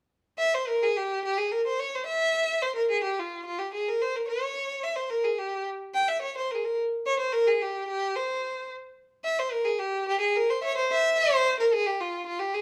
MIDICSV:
0, 0, Header, 1, 2, 480
1, 0, Start_track
1, 0, Tempo, 554529
1, 325, Time_signature, 2, 2, 24, 8
1, 10920, End_track
2, 0, Start_track
2, 0, Title_t, "Violin"
2, 0, Program_c, 0, 40
2, 332, Note_on_c, 0, 76, 85
2, 471, Note_on_c, 0, 72, 75
2, 484, Note_off_c, 0, 76, 0
2, 585, Note_on_c, 0, 70, 86
2, 598, Note_off_c, 0, 72, 0
2, 718, Note_on_c, 0, 68, 79
2, 731, Note_off_c, 0, 70, 0
2, 839, Note_on_c, 0, 67, 80
2, 851, Note_off_c, 0, 68, 0
2, 1063, Note_off_c, 0, 67, 0
2, 1081, Note_on_c, 0, 67, 89
2, 1193, Note_on_c, 0, 68, 76
2, 1206, Note_off_c, 0, 67, 0
2, 1310, Note_on_c, 0, 70, 74
2, 1323, Note_off_c, 0, 68, 0
2, 1420, Note_off_c, 0, 70, 0
2, 1444, Note_on_c, 0, 72, 70
2, 1555, Note_on_c, 0, 73, 81
2, 1568, Note_off_c, 0, 72, 0
2, 1690, Note_on_c, 0, 72, 75
2, 1703, Note_off_c, 0, 73, 0
2, 1782, Note_off_c, 0, 72, 0
2, 1787, Note_on_c, 0, 76, 92
2, 2270, Note_on_c, 0, 72, 78
2, 2283, Note_off_c, 0, 76, 0
2, 2379, Note_off_c, 0, 72, 0
2, 2384, Note_on_c, 0, 70, 70
2, 2491, Note_off_c, 0, 70, 0
2, 2512, Note_on_c, 0, 68, 84
2, 2615, Note_off_c, 0, 68, 0
2, 2631, Note_on_c, 0, 67, 68
2, 2767, Note_on_c, 0, 65, 65
2, 2780, Note_off_c, 0, 67, 0
2, 2985, Note_off_c, 0, 65, 0
2, 2990, Note_on_c, 0, 65, 75
2, 3106, Note_on_c, 0, 67, 68
2, 3118, Note_off_c, 0, 65, 0
2, 3221, Note_off_c, 0, 67, 0
2, 3236, Note_on_c, 0, 68, 65
2, 3363, Note_on_c, 0, 70, 73
2, 3376, Note_off_c, 0, 68, 0
2, 3475, Note_on_c, 0, 72, 87
2, 3488, Note_off_c, 0, 70, 0
2, 3600, Note_on_c, 0, 70, 56
2, 3613, Note_off_c, 0, 72, 0
2, 3702, Note_off_c, 0, 70, 0
2, 3707, Note_on_c, 0, 73, 86
2, 4184, Note_on_c, 0, 76, 78
2, 4197, Note_off_c, 0, 73, 0
2, 4293, Note_on_c, 0, 72, 67
2, 4305, Note_off_c, 0, 76, 0
2, 4413, Note_on_c, 0, 70, 80
2, 4426, Note_off_c, 0, 72, 0
2, 4536, Note_on_c, 0, 68, 63
2, 4549, Note_off_c, 0, 70, 0
2, 4659, Note_on_c, 0, 67, 64
2, 4672, Note_off_c, 0, 68, 0
2, 4899, Note_off_c, 0, 67, 0
2, 5144, Note_on_c, 0, 79, 88
2, 5265, Note_on_c, 0, 76, 83
2, 5278, Note_off_c, 0, 79, 0
2, 5377, Note_off_c, 0, 76, 0
2, 5382, Note_on_c, 0, 73, 83
2, 5493, Note_off_c, 0, 73, 0
2, 5520, Note_on_c, 0, 72, 68
2, 5633, Note_on_c, 0, 70, 58
2, 5646, Note_off_c, 0, 72, 0
2, 5668, Note_on_c, 0, 68, 54
2, 5681, Note_off_c, 0, 70, 0
2, 5753, Note_on_c, 0, 70, 70
2, 5766, Note_off_c, 0, 68, 0
2, 5867, Note_off_c, 0, 70, 0
2, 6113, Note_on_c, 0, 73, 92
2, 6218, Note_off_c, 0, 73, 0
2, 6228, Note_on_c, 0, 72, 80
2, 6341, Note_on_c, 0, 70, 91
2, 6354, Note_off_c, 0, 72, 0
2, 6467, Note_on_c, 0, 68, 76
2, 6480, Note_off_c, 0, 70, 0
2, 6597, Note_on_c, 0, 67, 72
2, 6610, Note_off_c, 0, 68, 0
2, 6818, Note_off_c, 0, 67, 0
2, 6823, Note_on_c, 0, 67, 84
2, 7059, Note_on_c, 0, 72, 72
2, 7072, Note_off_c, 0, 67, 0
2, 7538, Note_off_c, 0, 72, 0
2, 8000, Note_on_c, 0, 76, 83
2, 8130, Note_on_c, 0, 72, 77
2, 8143, Note_off_c, 0, 76, 0
2, 8233, Note_on_c, 0, 70, 82
2, 8246, Note_off_c, 0, 72, 0
2, 8357, Note_on_c, 0, 68, 77
2, 8370, Note_off_c, 0, 70, 0
2, 8476, Note_on_c, 0, 67, 84
2, 8489, Note_off_c, 0, 68, 0
2, 8724, Note_off_c, 0, 67, 0
2, 8728, Note_on_c, 0, 67, 97
2, 8830, Note_off_c, 0, 67, 0
2, 8836, Note_on_c, 0, 68, 79
2, 8964, Note_on_c, 0, 70, 88
2, 8977, Note_off_c, 0, 68, 0
2, 9090, Note_on_c, 0, 72, 75
2, 9103, Note_off_c, 0, 70, 0
2, 9180, Note_off_c, 0, 72, 0
2, 9187, Note_on_c, 0, 76, 55
2, 9214, Note_on_c, 0, 73, 96
2, 9227, Note_off_c, 0, 76, 0
2, 9321, Note_off_c, 0, 73, 0
2, 9326, Note_on_c, 0, 72, 82
2, 9448, Note_on_c, 0, 76, 97
2, 9461, Note_off_c, 0, 72, 0
2, 9682, Note_on_c, 0, 72, 113
2, 9695, Note_off_c, 0, 76, 0
2, 10034, Note_off_c, 0, 72, 0
2, 10040, Note_on_c, 0, 70, 73
2, 10156, Note_on_c, 0, 68, 96
2, 10169, Note_off_c, 0, 70, 0
2, 10269, Note_on_c, 0, 67, 81
2, 10282, Note_off_c, 0, 68, 0
2, 10394, Note_on_c, 0, 65, 76
2, 10407, Note_off_c, 0, 67, 0
2, 10612, Note_off_c, 0, 65, 0
2, 10617, Note_on_c, 0, 65, 82
2, 10727, Note_on_c, 0, 67, 74
2, 10740, Note_off_c, 0, 65, 0
2, 10856, Note_on_c, 0, 68, 74
2, 10869, Note_off_c, 0, 67, 0
2, 10920, Note_off_c, 0, 68, 0
2, 10920, End_track
0, 0, End_of_file